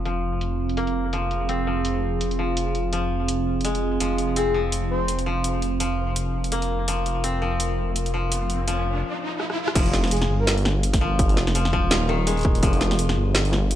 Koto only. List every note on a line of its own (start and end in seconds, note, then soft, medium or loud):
0.00 1.22 C4 medium
0.05 1.12 F3 medium
0.77 3.56 A#3 medium
1.13 1.66 F3 medium
1.49 4.09 C4 medium
1.67 2.38 F3 medium
2.39 2.92 F3 medium
2.93 3.99 F3 medium
3.65 7.03 G#3 medium
4.00 4.53 F3 medium
4.36 6.96 C4 medium
4.54 5.25 F3 medium
5.26 5.79 F3 medium
5.80 6.87 F3 medium
6.52 9.31 A#3 medium
6.88 7.41 F3 medium
7.24 9.84 C4 medium
7.42 8.12 F3 medium
8.14 8.66 F3 medium
8.68 9.74 F3 medium
9.75 11.00 F3 medium
11.01 11.54 F3 medium
11.55 11.72 F3 medium
11.73 12.14 F3 loud
12.09 13.75 D#3 loud
12.27 13.75 G#3 medium
12.63 13.75 F3 medium